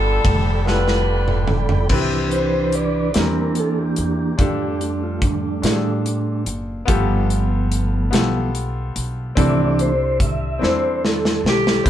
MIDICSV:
0, 0, Header, 1, 6, 480
1, 0, Start_track
1, 0, Key_signature, 0, "major"
1, 0, Tempo, 829990
1, 1101, Time_signature, 6, 3, 24, 8
1, 6881, End_track
2, 0, Start_track
2, 0, Title_t, "Grand piano"
2, 0, Program_c, 0, 0
2, 0, Control_c, 0, 64, 127
2, 0, Note_on_c, 0, 43, 65
2, 0, Note_on_c, 0, 59, 79
2, 0, Note_on_c, 0, 65, 74
2, 0, Note_on_c, 0, 67, 73
2, 0, Note_on_c, 0, 69, 91
2, 249, Note_off_c, 0, 65, 0
2, 254, Note_off_c, 0, 67, 0
2, 255, Note_off_c, 0, 69, 0
2, 266, Note_off_c, 0, 59, 0
2, 361, Note_off_c, 0, 43, 0
2, 378, Note_on_c, 0, 59, 68
2, 381, Note_on_c, 0, 65, 62
2, 389, Note_on_c, 0, 67, 60
2, 394, Note_on_c, 0, 69, 75
2, 966, Note_off_c, 0, 59, 0
2, 968, Note_off_c, 0, 65, 0
2, 972, Note_off_c, 0, 67, 0
2, 974, Note_off_c, 0, 69, 0
2, 1094, Note_on_c, 0, 60, 82
2, 1099, Note_on_c, 0, 64, 77
2, 1104, Note_on_c, 0, 48, 67
2, 1105, Note_on_c, 0, 67, 77
2, 1108, Control_c, 0, 64, 0
2, 1112, Note_on_c, 0, 71, 94
2, 1210, Control_c, 0, 64, 127
2, 1685, Note_off_c, 0, 60, 0
2, 1687, Note_off_c, 0, 64, 0
2, 1690, Note_off_c, 0, 67, 0
2, 1693, Note_off_c, 0, 71, 0
2, 1799, Note_off_c, 0, 48, 0
2, 1817, Note_on_c, 0, 60, 60
2, 1821, Note_on_c, 0, 64, 55
2, 1825, Note_on_c, 0, 52, 61
2, 1828, Control_c, 0, 64, 0
2, 1829, Note_on_c, 0, 67, 55
2, 1834, Note_on_c, 0, 70, 68
2, 1939, Control_c, 0, 64, 127
2, 2406, Note_off_c, 0, 60, 0
2, 2408, Note_off_c, 0, 64, 0
2, 2412, Note_off_c, 0, 67, 0
2, 2414, Note_off_c, 0, 70, 0
2, 2520, Note_off_c, 0, 52, 0
2, 2531, Note_on_c, 0, 62, 77
2, 2538, Note_on_c, 0, 65, 68
2, 2543, Note_on_c, 0, 67, 67
2, 2548, Control_c, 0, 64, 0
2, 2551, Note_on_c, 0, 69, 84
2, 2667, Control_c, 0, 64, 127
2, 3122, Note_off_c, 0, 62, 0
2, 3126, Note_off_c, 0, 65, 0
2, 3129, Note_off_c, 0, 67, 0
2, 3133, Note_off_c, 0, 69, 0
2, 3251, Note_on_c, 0, 62, 64
2, 3257, Note_on_c, 0, 65, 61
2, 3265, Note_on_c, 0, 67, 58
2, 3269, Note_on_c, 0, 68, 53
2, 3302, Note_off_c, 0, 68, 0
2, 3307, Note_on_c, 0, 69, 71
2, 3843, Note_off_c, 0, 62, 0
2, 3845, Note_off_c, 0, 65, 0
2, 3850, Note_off_c, 0, 67, 0
2, 3871, Note_off_c, 0, 69, 0
2, 3964, Note_on_c, 0, 59, 92
2, 3971, Note_on_c, 0, 65, 85
2, 3974, Note_on_c, 0, 43, 75
2, 3979, Note_on_c, 0, 67, 86
2, 3984, Note_on_c, 0, 69, 100
2, 3987, Control_c, 0, 64, 0
2, 4102, Control_c, 0, 64, 127
2, 4559, Note_off_c, 0, 59, 0
2, 4562, Note_off_c, 0, 65, 0
2, 4566, Note_off_c, 0, 67, 0
2, 4569, Note_off_c, 0, 69, 0
2, 4674, Note_off_c, 0, 43, 0
2, 4688, Note_on_c, 0, 59, 80
2, 4695, Note_on_c, 0, 65, 72
2, 4698, Note_on_c, 0, 67, 70
2, 4705, Note_on_c, 0, 69, 90
2, 5281, Note_off_c, 0, 59, 0
2, 5284, Note_off_c, 0, 65, 0
2, 5286, Note_off_c, 0, 67, 0
2, 5289, Note_off_c, 0, 69, 0
2, 5409, Note_on_c, 0, 60, 81
2, 5419, Note_on_c, 0, 62, 80
2, 5420, Note_on_c, 0, 48, 70
2, 5424, Note_on_c, 0, 64, 75
2, 5425, Control_c, 0, 64, 0
2, 5426, Note_on_c, 0, 69, 86
2, 5528, Control_c, 0, 64, 127
2, 6001, Note_off_c, 0, 60, 0
2, 6006, Note_off_c, 0, 62, 0
2, 6008, Note_off_c, 0, 64, 0
2, 6009, Note_off_c, 0, 69, 0
2, 6116, Note_off_c, 0, 48, 0
2, 6125, Note_on_c, 0, 60, 72
2, 6134, Note_on_c, 0, 62, 65
2, 6139, Note_on_c, 0, 64, 66
2, 6148, Note_on_c, 0, 69, 78
2, 6719, Note_off_c, 0, 60, 0
2, 6723, Note_off_c, 0, 62, 0
2, 6726, Note_off_c, 0, 64, 0
2, 6730, Note_off_c, 0, 69, 0
2, 6847, Note_on_c, 0, 60, 76
2, 6853, Note_on_c, 0, 64, 64
2, 6857, Note_on_c, 0, 48, 60
2, 6861, Note_on_c, 0, 67, 67
2, 6866, Control_c, 0, 64, 0
2, 6881, Note_off_c, 0, 48, 0
2, 6881, Note_off_c, 0, 60, 0
2, 6881, Note_off_c, 0, 64, 0
2, 6881, Note_off_c, 0, 67, 0
2, 6881, End_track
3, 0, Start_track
3, 0, Title_t, "Saxophone section"
3, 0, Program_c, 1, 65
3, 0, Note_on_c, 1, 62, 74
3, 0, Note_on_c, 1, 65, 72
3, 0, Note_on_c, 1, 69, 104
3, 360, Note_off_c, 1, 65, 0
3, 363, Note_off_c, 1, 62, 0
3, 384, Note_off_c, 1, 69, 0
3, 384, Note_on_c, 1, 71, 91
3, 389, Note_on_c, 1, 62, 70
3, 395, Note_on_c, 1, 65, 67
3, 899, Note_off_c, 1, 71, 0
3, 1082, Note_off_c, 1, 62, 0
3, 1085, Note_off_c, 1, 65, 0
3, 6639, Note_on_c, 1, 67, 83
3, 6852, Note_off_c, 1, 67, 0
3, 6881, End_track
4, 0, Start_track
4, 0, Title_t, "Tonewheel organ"
4, 0, Program_c, 2, 16
4, 0, Note_on_c, 2, 69, 69
4, 0, Note_on_c, 2, 74, 63
4, 0, Note_on_c, 2, 79, 62
4, 0, Note_on_c, 2, 83, 78
4, 1075, Note_off_c, 2, 74, 0
4, 1084, Note_off_c, 2, 69, 0
4, 1085, Note_off_c, 2, 79, 0
4, 1086, Note_off_c, 2, 83, 0
4, 1097, Note_on_c, 2, 52, 49
4, 1102, Note_on_c, 2, 71, 46
4, 1105, Note_on_c, 2, 62, 51
4, 1340, Note_on_c, 2, 72, 83
4, 1587, Note_off_c, 2, 72, 0
4, 1590, Note_on_c, 2, 74, 88
4, 1795, Note_off_c, 2, 52, 0
4, 1798, Note_off_c, 2, 71, 0
4, 1800, Note_off_c, 2, 62, 0
4, 1829, Note_on_c, 2, 52, 51
4, 1832, Note_off_c, 2, 74, 0
4, 1832, Note_on_c, 2, 58, 46
4, 1835, Note_on_c, 2, 62, 57
4, 1838, Note_on_c, 2, 70, 93
4, 2076, Note_off_c, 2, 70, 0
4, 2076, Note_on_c, 2, 69, 87
4, 2191, Note_on_c, 2, 67, 85
4, 2192, Note_off_c, 2, 69, 0
4, 2297, Note_off_c, 2, 67, 0
4, 2308, Note_on_c, 2, 67, 91
4, 2521, Note_off_c, 2, 52, 0
4, 2523, Note_off_c, 2, 58, 0
4, 2525, Note_off_c, 2, 62, 0
4, 2544, Note_on_c, 2, 55, 50
4, 2549, Note_on_c, 2, 62, 59
4, 2552, Note_on_c, 2, 57, 45
4, 2779, Note_off_c, 2, 62, 0
4, 2786, Note_on_c, 2, 62, 71
4, 2798, Note_off_c, 2, 67, 0
4, 2907, Note_off_c, 2, 62, 0
4, 2910, Note_on_c, 2, 65, 79
4, 3029, Note_off_c, 2, 65, 0
4, 3034, Note_on_c, 2, 62, 84
4, 3503, Note_off_c, 2, 55, 0
4, 3508, Note_off_c, 2, 57, 0
4, 3509, Note_off_c, 2, 62, 0
4, 3510, Note_on_c, 2, 55, 48
4, 3515, Note_on_c, 2, 57, 44
4, 3516, Note_on_c, 2, 62, 55
4, 3722, Note_off_c, 2, 55, 0
4, 3724, Note_off_c, 2, 57, 0
4, 3725, Note_off_c, 2, 62, 0
4, 3988, Note_on_c, 2, 53, 56
4, 3990, Note_on_c, 2, 57, 50
4, 3992, Note_on_c, 2, 59, 59
4, 4680, Note_off_c, 2, 53, 0
4, 4682, Note_off_c, 2, 57, 0
4, 4682, Note_off_c, 2, 59, 0
4, 4702, Note_on_c, 2, 53, 53
4, 4702, Note_on_c, 2, 57, 47
4, 4708, Note_on_c, 2, 59, 54
4, 4918, Note_off_c, 2, 53, 0
4, 4918, Note_off_c, 2, 57, 0
4, 4921, Note_off_c, 2, 59, 0
4, 5414, Note_on_c, 2, 52, 56
4, 5419, Note_on_c, 2, 57, 53
4, 5419, Note_on_c, 2, 62, 63
4, 5426, Note_on_c, 2, 74, 99
4, 5669, Note_off_c, 2, 74, 0
4, 5672, Note_on_c, 2, 72, 96
4, 5735, Note_off_c, 2, 52, 0
4, 5738, Note_off_c, 2, 57, 0
4, 5738, Note_off_c, 2, 62, 0
4, 5889, Note_off_c, 2, 72, 0
4, 5910, Note_on_c, 2, 76, 99
4, 6151, Note_off_c, 2, 76, 0
4, 6152, Note_on_c, 2, 72, 96
4, 6328, Note_off_c, 2, 72, 0
4, 6334, Note_on_c, 2, 72, 61
4, 6377, Note_off_c, 2, 72, 0
4, 6397, Note_on_c, 2, 69, 85
4, 6844, Note_off_c, 2, 69, 0
4, 6881, End_track
5, 0, Start_track
5, 0, Title_t, "Upright bass"
5, 0, Program_c, 3, 32
5, 0, Note_on_c, 3, 31, 101
5, 118, Note_off_c, 3, 31, 0
5, 142, Note_on_c, 3, 29, 93
5, 1078, Note_off_c, 3, 29, 0
5, 1096, Note_on_c, 3, 36, 87
5, 1795, Note_off_c, 3, 36, 0
5, 1824, Note_on_c, 3, 40, 84
5, 2279, Note_off_c, 3, 40, 0
5, 2303, Note_on_c, 3, 40, 83
5, 2522, Note_off_c, 3, 40, 0
5, 2539, Note_on_c, 3, 41, 93
5, 3236, Note_off_c, 3, 41, 0
5, 3256, Note_on_c, 3, 45, 96
5, 3715, Note_off_c, 3, 45, 0
5, 3736, Note_on_c, 3, 30, 83
5, 3958, Note_off_c, 3, 30, 0
5, 3978, Note_on_c, 3, 31, 105
5, 4675, Note_off_c, 3, 31, 0
5, 4700, Note_on_c, 3, 35, 91
5, 5156, Note_off_c, 3, 35, 0
5, 5180, Note_on_c, 3, 35, 82
5, 5400, Note_off_c, 3, 35, 0
5, 5421, Note_on_c, 3, 36, 102
5, 6116, Note_off_c, 3, 36, 0
5, 6140, Note_on_c, 3, 40, 89
5, 6596, Note_off_c, 3, 40, 0
5, 6615, Note_on_c, 3, 35, 85
5, 6837, Note_off_c, 3, 35, 0
5, 6859, Note_on_c, 3, 36, 94
5, 6881, Note_off_c, 3, 36, 0
5, 6881, End_track
6, 0, Start_track
6, 0, Title_t, "Drums"
6, 143, Note_on_c, 9, 36, 99
6, 145, Note_on_c, 9, 51, 58
6, 200, Note_off_c, 9, 36, 0
6, 203, Note_off_c, 9, 51, 0
6, 390, Note_on_c, 9, 38, 55
6, 448, Note_off_c, 9, 38, 0
6, 507, Note_on_c, 9, 38, 55
6, 565, Note_off_c, 9, 38, 0
6, 738, Note_on_c, 9, 45, 70
6, 796, Note_off_c, 9, 45, 0
6, 853, Note_on_c, 9, 43, 98
6, 911, Note_off_c, 9, 43, 0
6, 977, Note_on_c, 9, 43, 93
6, 1035, Note_off_c, 9, 43, 0
6, 1095, Note_on_c, 9, 49, 82
6, 1098, Note_on_c, 9, 36, 94
6, 1153, Note_off_c, 9, 49, 0
6, 1156, Note_off_c, 9, 36, 0
6, 1338, Note_on_c, 9, 42, 46
6, 1396, Note_off_c, 9, 42, 0
6, 1576, Note_on_c, 9, 42, 61
6, 1634, Note_off_c, 9, 42, 0
6, 1817, Note_on_c, 9, 42, 77
6, 1825, Note_on_c, 9, 38, 99
6, 1875, Note_off_c, 9, 42, 0
6, 1883, Note_off_c, 9, 38, 0
6, 2054, Note_on_c, 9, 42, 55
6, 2112, Note_off_c, 9, 42, 0
6, 2292, Note_on_c, 9, 42, 57
6, 2350, Note_off_c, 9, 42, 0
6, 2537, Note_on_c, 9, 42, 65
6, 2538, Note_on_c, 9, 36, 105
6, 2595, Note_off_c, 9, 42, 0
6, 2596, Note_off_c, 9, 36, 0
6, 2781, Note_on_c, 9, 42, 48
6, 2839, Note_off_c, 9, 42, 0
6, 3017, Note_on_c, 9, 42, 64
6, 3018, Note_on_c, 9, 36, 90
6, 3075, Note_off_c, 9, 42, 0
6, 3076, Note_off_c, 9, 36, 0
6, 3259, Note_on_c, 9, 42, 83
6, 3267, Note_on_c, 9, 38, 91
6, 3317, Note_off_c, 9, 42, 0
6, 3325, Note_off_c, 9, 38, 0
6, 3503, Note_on_c, 9, 42, 58
6, 3561, Note_off_c, 9, 42, 0
6, 3738, Note_on_c, 9, 42, 61
6, 3796, Note_off_c, 9, 42, 0
6, 3979, Note_on_c, 9, 42, 76
6, 3980, Note_on_c, 9, 36, 102
6, 4037, Note_off_c, 9, 36, 0
6, 4037, Note_off_c, 9, 42, 0
6, 4223, Note_on_c, 9, 42, 51
6, 4281, Note_off_c, 9, 42, 0
6, 4462, Note_on_c, 9, 42, 68
6, 4520, Note_off_c, 9, 42, 0
6, 4701, Note_on_c, 9, 42, 86
6, 4710, Note_on_c, 9, 38, 100
6, 4759, Note_off_c, 9, 42, 0
6, 4767, Note_off_c, 9, 38, 0
6, 4943, Note_on_c, 9, 42, 54
6, 5001, Note_off_c, 9, 42, 0
6, 5181, Note_on_c, 9, 42, 61
6, 5239, Note_off_c, 9, 42, 0
6, 5419, Note_on_c, 9, 36, 105
6, 5421, Note_on_c, 9, 42, 78
6, 5476, Note_off_c, 9, 36, 0
6, 5479, Note_off_c, 9, 42, 0
6, 5663, Note_on_c, 9, 42, 52
6, 5721, Note_off_c, 9, 42, 0
6, 5899, Note_on_c, 9, 36, 91
6, 5900, Note_on_c, 9, 42, 70
6, 5957, Note_off_c, 9, 36, 0
6, 5958, Note_off_c, 9, 42, 0
6, 6149, Note_on_c, 9, 38, 56
6, 6207, Note_off_c, 9, 38, 0
6, 6388, Note_on_c, 9, 38, 73
6, 6446, Note_off_c, 9, 38, 0
6, 6508, Note_on_c, 9, 38, 76
6, 6566, Note_off_c, 9, 38, 0
6, 6629, Note_on_c, 9, 38, 94
6, 6687, Note_off_c, 9, 38, 0
6, 6749, Note_on_c, 9, 38, 96
6, 6807, Note_off_c, 9, 38, 0
6, 6857, Note_on_c, 9, 36, 94
6, 6858, Note_on_c, 9, 42, 71
6, 6881, Note_off_c, 9, 36, 0
6, 6881, Note_off_c, 9, 42, 0
6, 6881, End_track
0, 0, End_of_file